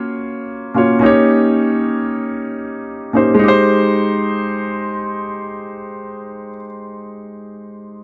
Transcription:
0.00 0.70 A#3 medium
0.00 0.71 C#4 medium
0.00 0.72 F4 medium
0.00 0.73 F#4 medium
0.00 0.74 C#5 medium
0.74 0.98 A#3 medium
0.74 0.99 C#4 medium
0.74 1.02 F4 medium
0.74 1.03 F#4 medium
0.74 1.03 C#5 medium
0.99 3.09 A#3 medium
0.99 3.10 C#4 medium
0.99 3.11 D#4 medium
1.04 3.12 G4 medium
1.04 3.13 C#5 medium
3.13 3.40 A#3 medium
3.13 3.41 C#4 medium
3.13 3.38 D#4 medium
3.13 3.42 G4 medium
3.13 3.42 C5 medium
3.34 6.50 G#3 medium
3.39 6.55 D#4 medium
3.44 6.59 G4 medium
3.48 6.64 C5 loud

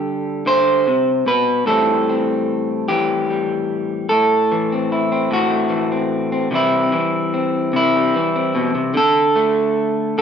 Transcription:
0.00 0.45 D3 medium
0.00 1.67 G3 soft
0.00 1.63 G4 soft
0.00 0.46 A4 medium
0.46 0.86 D3 medium
0.46 1.27 C5 loud
0.87 1.26 C3 medium
1.26 1.66 B2 medium
1.26 1.67 B4 medium
1.66 4.10 A2 medium
1.66 2.88 E3 soft
1.66 3.29 G3 soft
1.66 2.08 C4 soft
1.66 2.88 A4 medium
2.09 4.06 C4 soft
2.88 4.05 E3 medium
2.88 4.09 G4 medium
3.30 4.10 G3 soft
4.09 5.30 A2 medium
4.09 4.91 A4 medium
4.52 5.68 E3 medium
4.72 5.12 C4 soft
4.92 5.33 E4 soft
5.12 5.91 C4 soft
5.31 6.50 A2 medium
5.31 6.54 F#4 medium
5.51 6.48 A3 soft
5.70 6.47 E3 medium
5.92 6.31 C4 soft
6.32 6.48 C4 soft
6.51 6.92 C3 medium
6.51 6.91 E3 soft
6.51 7.95 G3 soft
6.51 7.33 C4 soft
6.55 7.75 E4 medium
6.92 8.14 E3 medium
7.34 8.34 C4 medium
7.73 8.14 C3 medium
7.73 8.97 E4 loud
7.96 8.97 G3 soft
8.15 8.91 E3 medium
8.36 8.91 C4 soft
8.55 8.74 B2 medium
8.75 8.96 C3 medium
8.94 10.16 D3 medium
8.94 10.17 A4 loud
9.36 10.22 A3 medium
10.18 10.22 D3 medium
10.18 10.22 A4 loud

